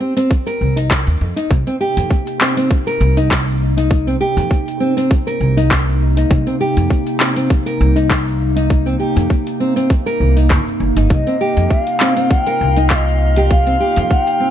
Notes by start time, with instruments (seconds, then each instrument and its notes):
0.00 nylon-string guitar C4
0.17 nylon-string guitar C4, closed hi-hat, shaker
0.31 kick, shaker
0.47 nylon-string guitar A#4, closed hi-hat, shaker
0.61 upright bass C2
0.76 nylon-string guitar D#4, closed hi-hat, shaker
0.91 kick, clap, shaker
1.07 upright bass D#2, closed hi-hat, shaker
1.21 upright bass F2
1.36 nylon-string guitar D#4, closed hi-hat, shaker
1.51 upright bass C2, ambient pad C3 A#3 D#4, kick, shaker
1.67 nylon-string guitar C4, closed hi-hat, shaker
1.81 nylon-string guitar G4
1.97 upright bass F2, closed hi-hat, shaker
2.11 kick, shaker
2.27 closed hi-hat, shaker
2.41 nylon-string guitar C4, clap
2.57 nylon-string guitar C4, closed hi-hat, shaker
2.71 kick, shaker
2.87 nylon-string guitar A#4, closed hi-hat, shaker
3.01 upright bass C2
3.17 nylon-string guitar D#4, closed hi-hat, shaker
3.31 kick, clap, shaker
3.49 shaker
3.77 nylon-string guitar D#4, closed hi-hat, shaker
3.91 kick, shaker
4.07 nylon-string guitar C4, closed hi-hat, shaker
4.21 nylon-string guitar G4
4.37 upright bass F2, closed hi-hat, shaker
4.51 kick, shaker
4.68 closed hi-hat, shaker
4.80 nylon-string guitar C4
4.97 nylon-string guitar C4, closed hi-hat, shaker
5.11 kick, shaker
5.27 nylon-string guitar A#4, closed hi-hat, shaker
5.41 upright bass C2
5.57 nylon-string guitar D#4, closed hi-hat, shaker
5.71 kick, clap, shaker
5.88 shaker
6.17 nylon-string guitar D#4, closed hi-hat, shaker
6.31 upright bass C2, kick, shaker
6.47 nylon-string guitar C4, closed hi-hat, shaker
6.61 nylon-string guitar G4
6.77 upright bass F2, closed hi-hat, shaker
6.90 kick, shaker
7.07 closed hi-hat, shaker
7.20 nylon-string guitar C4, clap
7.36 nylon-string guitar C4, closed hi-hat, shaker
7.50 kick, shaker
7.66 nylon-string guitar A#4, closed hi-hat, shaker
7.81 upright bass C2
7.96 nylon-string guitar D#4, closed hi-hat, shaker
8.10 kick, clap, shaker
8.27 shaker
8.56 nylon-string guitar D#4, closed hi-hat, shaker
8.70 kick, shaker
8.86 nylon-string guitar C4, closed hi-hat, shaker
9.00 nylon-string guitar G4
9.16 upright bass F2, closed hi-hat, shaker
9.30 kick, shaker
9.47 closed hi-hat, shaker
9.60 nylon-string guitar C4
9.76 nylon-string guitar C4, closed hi-hat, shaker
9.90 kick, shaker
10.06 nylon-string guitar A#4, closed hi-hat, shaker
10.20 upright bass C2
10.37 nylon-string guitar D#4, closed hi-hat, shaker
10.50 upright bass G1, kick, clap, shaker
10.67 shaker
10.80 upright bass G1
10.97 upright bass G1, nylon-string guitar D#4, closed hi-hat, shaker
11.10 upright bass C2, synth texture F4 F5, ney D#5, kick, shaker
11.27 nylon-string guitar C4, closed hi-hat, shaker
11.41 nylon-string guitar G4
11.57 upright bass F2, closed hi-hat, shaker
11.70 ney E5, kick, shaker
11.83 ney F5, closed hi-hat
11.88 shaker
12.00 nylon-string guitar C4, clap
12.17 nylon-string guitar C4, closed hi-hat, shaker
12.31 ney F#5, kick, shaker
12.43 ney G5, closed hi-hat
12.47 nylon-string guitar A#4, shaker
12.61 upright bass C2
12.77 nylon-string guitar D#4, closed hi-hat, shaker
12.90 ney F5, kick, clap, shaker
12.95 ney D#5
13.07 shaker
13.36 nylon-string guitar G4, closed hi-hat, shaker
13.50 ney F5, kick, shaker
13.66 nylon-string guitar C4, closed hi-hat, shaker
13.80 nylon-string guitar G4
13.96 upright bass F2, closed hi-hat, shaker
14.11 ney F#5, kick, shaker
14.23 ney G5
14.27 closed hi-hat, shaker
14.40 nylon-string guitar C4